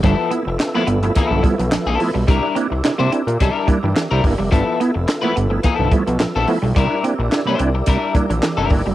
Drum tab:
HH |x-x-x-xxx-xxx-o-|x-x-x-xxx-x-x-o-|x-x-x-x-x-xxx-o-|x-x-x-x-x-xxx-o-|
CP |----x-------x---|----x-------x---|----x-------x---|----x-------x---|
SD |----o-------o---|----o-------o---|----o-------o---|----o-------o---|
BD |o-------o-o-----|o-------o-o---o-|o-------o-o-----|o-------o-o---o-|